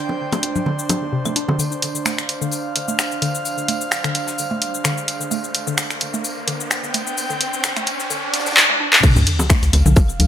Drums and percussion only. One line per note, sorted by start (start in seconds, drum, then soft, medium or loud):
0.09 low bongo soft
0.32 open hi-hat soft
0.32 low bongo medium
0.32 shaker soft
0.43 open hi-hat medium
0.56 low conga medium
0.56 shaker soft
0.66 low bongo soft
0.79 shaker soft
0.89 open hi-hat medium
0.89 low bongo medium
0.89 low conga medium
0.89 shaker soft
1.25 low bongo soft
1.25 claves medium
1.25 shaker soft
1.36 open hi-hat medium
1.49 low bongo medium
1.59 tambourine medium
1.59 shaker medium
1.72 shaker soft
1.82 open hi-hat medium
1.82 tambourine medium
1.95 shaker soft
2.05 finger snap medium
2.05 snare loud
2.05 tambourine medium
2.05 shaker medium
2.18 finger snap medium
2.18 snare soft
2.18 open hi-hat soft
2.18 shaker soft
2.29 open hi-hat medium
2.29 tambourine medium
2.42 shaker soft
2.51 tambourine medium
2.51 shaker medium
2.76 open hi-hat medium
2.76 tambourine medium
2.88 shaker soft
2.99 finger snap medium
2.99 snare loud
2.99 tambourine medium
2.99 shaker medium
3.12 shaker soft
3.22 open hi-hat medium
3.22 tambourine medium
3.35 shaker soft
3.45 tambourine medium
3.45 shaker medium
3.58 shaker soft
3.68 open hi-hat medium
3.68 tambourine medium
3.81 shaker soft
3.91 finger snap loud
3.91 snare loud
3.91 tambourine medium
3.91 shaker medium
4.04 finger snap medium
4.04 open hi-hat soft
4.04 shaker soft
4.15 open hi-hat medium
4.15 tambourine medium
4.27 snare medium
4.27 shaker soft
4.38 tambourine medium
4.38 shaker medium
4.62 open hi-hat medium
4.62 tambourine medium
4.74 shaker soft
4.84 finger snap loud
4.84 snare loud
4.84 tambourine medium
4.84 shaker medium
4.98 shaker soft
5.08 open hi-hat medium
5.08 tambourine medium
5.21 shaker soft
5.31 tambourine medium
5.31 shaker medium
5.44 shaker soft
5.54 open hi-hat loud
5.54 tambourine medium
5.67 shaker soft
5.77 finger snap loud
5.77 snare loud
5.77 tambourine medium
5.77 shaker medium
5.91 finger snap medium
5.91 snare soft
5.91 open hi-hat soft
5.91 shaker soft
6.00 open hi-hat loud
6.00 tambourine medium
6.14 shaker soft
6.24 tambourine medium
6.24 shaker medium
6.47 open hi-hat loud
6.47 tambourine medium
6.60 shaker soft
6.71 finger snap loud
6.71 snare loud
6.71 tambourine medium
6.71 shaker medium
6.84 shaker soft
6.94 open hi-hat loud
6.94 tambourine medium
7.07 shaker soft
7.18 tambourine medium
7.18 shaker soft
7.30 shaker soft
7.41 open hi-hat loud
7.41 tambourine medium
7.53 shaker soft
7.64 finger snap medium
7.64 snare loud
7.64 tambourine loud
7.64 shaker medium
7.77 finger snap medium
7.77 open hi-hat soft
7.77 shaker soft
7.87 open hi-hat loud
7.87 tambourine medium
7.99 snare medium
7.99 shaker soft
8.10 tambourine medium
8.10 shaker medium
8.33 snare medium
8.33 open hi-hat loud
8.33 tambourine medium
8.40 snare medium
8.40 tambourine medium
8.46 snare medium
8.46 tambourine medium
8.46 shaker soft
8.51 snare medium
8.51 tambourine medium
8.57 clap loud
8.93 clap medium
9.03 kick loud
9.03 crash loud
9.03 tambourine medium
9.03 shaker medium
9.16 low bongo soft
9.16 shaker soft
9.26 open hi-hat loud
9.26 tambourine medium
9.39 low bongo medium
9.39 shaker soft
9.50 finger snap loud
9.50 kick loud
9.50 snare loud
9.50 tambourine loud
9.50 shaker medium
9.63 snare soft
9.63 open hi-hat soft
9.63 shaker soft
9.73 open hi-hat medium
9.73 tambourine medium
9.73 low bongo soft
9.73 claves medium
9.86 low conga loud
9.86 shaker soft
9.96 kick loud
9.96 tambourine medium
9.96 low bongo medium
9.96 shaker medium
10.09 shaker soft
10.20 open hi-hat loud
10.20 tambourine medium
10.20 low conga medium